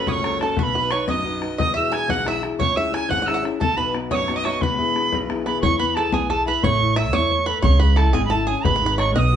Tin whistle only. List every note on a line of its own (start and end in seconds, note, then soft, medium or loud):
0.08 0.40 C#6 loud
0.08 0.13 D#6 medium
0.40 0.60 A5 medium
0.59 0.92 B5 loud
0.59 0.64 C#6 loud
0.91 1.07 C#6 medium
1.08 1.36 D#6 medium
1.59 1.74 D#6 loud
1.75 1.94 E6 medium
1.93 2.11 G#6 loud
2.10 2.26 F#6 loud
2.27 2.42 E6 loud
2.59 2.77 C#6 loud
2.76 2.95 E6 medium
2.94 3.11 G#6 loud
3.09 3.28 F#6 loud
3.26 3.44 E6 medium
3.60 3.78 A5 loud
3.77 3.94 B5 medium
4.11 4.38 C#6 loud
4.11 4.16 D#6 medium
4.36 4.46 D#6 medium
4.44 4.63 C#6 medium
4.61 5.17 B5 loud
5.46 5.61 B5 medium
5.61 5.78 C#6 loud
5.78 5.96 B5 medium
5.95 6.14 A5 loud
6.13 6.31 G#5 loud
6.30 6.45 A5 loud
6.46 6.65 B5 loud
6.63 6.98 C#6 loud
6.97 7.16 E6 loud
7.15 7.48 C#6 loud
7.46 7.61 B5 loud
7.62 7.81 C#6 loud
7.79 7.98 B5 loud
7.97 8.15 A5 loud
8.13 8.24 G#5 medium
8.25 8.32 B5 medium
8.30 8.49 A5 medium
8.47 8.65 G#5 loud
8.64 8.98 B5 loud
8.98 9.13 C#6 loud
9.14 9.19 F#6 loud
9.18 9.36 D#6 loud